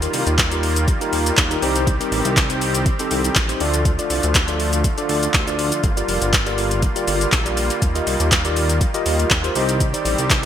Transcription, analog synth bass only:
0.13 C2
0.27 D#2
1.13 D#2
1.38 D#2
1.62 C2
2.12 A1
2.25 C2
3.11 C2
3.36 A1
3.61 D2
4.10 C2
4.24 D2
5.09 D2
5.34 D2
5.84 G1
6.08 F1
6.22 G1
7.07 G1
7.33 A#1
7.82 D#2
8.07 C2
8.20 D#2
9.06 D#2
9.31 D#2
9.56 C2
10.05 A1
10.18 C2

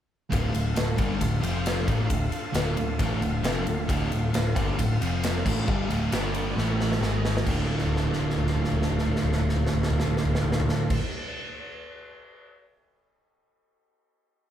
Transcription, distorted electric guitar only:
0.30 D2 A2 D3
0.53 D2 A2
0.76 D2 A2
0.97 G2 D3 G3
1.19 D2 A2
1.41 F2 C3 F3
1.86 A2 E3 A3
2.08 D2 A2
2.53 D2 A2 D3
2.77 D2 A2
2.99 A2 E3 A3
3.21 D2 A2
3.43 F2 C3 F3
3.66 D2 A2
3.88 D2 A2 D3
4.10 D2 A2
4.33 D2 A2
4.55 G2 D3 G3
4.78 D2 A2
5.01 F2 C3 F3
5.44 A2 E3 A3
5.67 G2 D3 G3
5.89 D2 A2 D3
6.12 G2 D3 G3
6.55 A2 E3 A3
7.00 G#2 D#3 G#3
7.44 D2 A2
7.48 D3

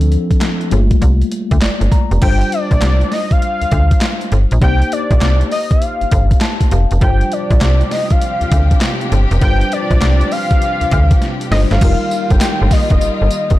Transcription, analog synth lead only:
2.23 G5
2.53 D5
3.13 D#5
3.32 F5
4.63 G5
4.93 D5
5.52 D#5
5.71 F5
7.03 G5
7.33 D5
7.92 D#5
8.11 F5
9.43 G5
9.73 D5
10.32 F5
11.51 D#5
11.71 F5
12.31 G5
12.72 D#5
12.91 D#5

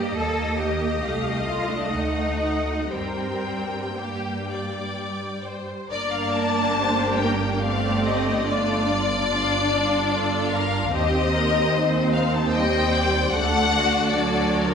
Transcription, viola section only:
Already playing: A#3
0.17 A#3
1.04 A3
2.93 G3
5.92 A#3 D4
7.62 A3 C4
8.46 A3 D4
8.86 D4
9.29 F4
9.71 F4
10.93 C4 G4
11.72 C4 D#4
12.53 G3 C4
13.34 A3 D4
14.14 F#3

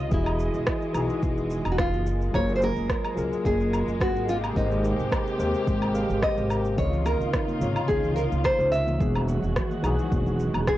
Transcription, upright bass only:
0.12 E1
0.54 E1
0.95 B1
1.23 E1
1.65 E1
1.93 F#1
2.34 F#1
2.76 F#1
3.17 C#2
3.45 F#1
3.88 F#1
4.15 G#1
4.56 G#1
4.99 G#1
5.39 D#2
5.67 G#1
6.10 G#1
6.38 G#1
6.78 C#2
7.21 C#2
7.61 G#1
7.89 C#2
8.32 C#2
8.59 C#2
9.00 E1
9.42 E1
9.83 B1
10.12 E1
10.54 E1

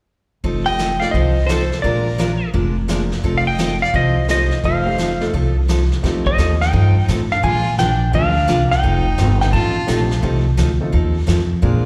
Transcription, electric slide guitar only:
0.66 G5
1.00 F5
1.11 D#5
1.47 C5
1.82 D5
3.37 F5
3.47 G5
3.82 F5
3.96 D#5
4.31 D#5
4.65 F5
6.27 D#5
6.61 G5
7.32 F5
7.44 G#5
7.79 G5
8.15 F5
8.71 G5
9.41 G5
9.53 A5

